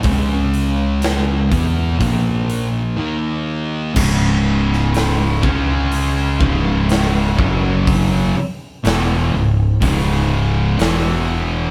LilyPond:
<<
  \new Staff \with { instrumentName = "Distorted electric guitar" } { \clef bass \time 4/4 \key cis \dorian \tempo 4 = 61 <cis gis cis'>4. <e b e'>8 <ais, eis ais>4 <dis ais dis'>4 | <cis, gis, cis>4. <cis gis cis'>4 <cis, gis, cis>4 <fis, cis fis>8~ | <fis, cis fis>8 r8 <e, b, e>8 <cis, gis,>8 <cis, gis, cis>4 <e, b, e>4 | }
  \new Staff \with { instrumentName = "Distorted electric guitar" } { \clef bass \time 4/4 \key cis \dorian <cis gis cis'>4. <e b e'>8 <ais, eis ais>4 <dis ais dis'>4 | <cis, gis, cis>4. <cis gis cis'>4 <cis, gis, cis>4 <fis, cis fis>8~ | <fis, cis fis>8 r8 <e, b, e>8 <cis, gis,>8 <cis, gis, cis>4 <e, b, e>4 | }
  \new Staff \with { instrumentName = "Distorted electric guitar" } { \clef bass \time 4/4 \key cis \dorian r1 | <cis, gis, cis>4. <cis gis cis'>4 <cis, gis, cis>4 <fis, cis fis>8~ | <fis, cis fis>8 r8 <e, b, e>8 <cis, gis,>8 <cis, gis, cis>4 <e, b, e>4 | }
  \new Staff \with { instrumentName = "Fingered electric bass" } { \clef bass \time 4/4 \key cis \dorian cis,4. e,8 ais,,4 r4 | cis,,4. cis,4 cis,,4 fis,,8~ | fis,,8 r8 e,,8 cis,,8 cis,,4 e,,4 | }
  \new DrumStaff \with { instrumentName = "Drums" } \drummode { \time 4/4 <hho bd>8 hho8 <hho sn>8 <hho bd>8 <hho bd>8 hho8 r4 | <cymc bd>8. sn16 <hho sn>8 bd8 hho8 bd8 <hho sn>8 bd8 | <hho bd>4 <hho sn>4 <hho bd>4 <hho sn>4 | }
>>